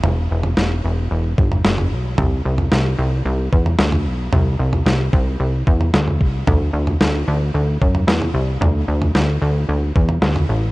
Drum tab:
SD |----o-------o---|----o-------o---|----o-------o---|----o-------o---|
FT |o--o-------o-o--|o--o-------o-o--|o--o-------o-o--|o--o-------o-o--|
BD |----------o-----|o---------o-----|------o---o---o-|o---------o-----|

SD |----o-------o---|
FT |o--o-------o-o--|
BD |----------o-----|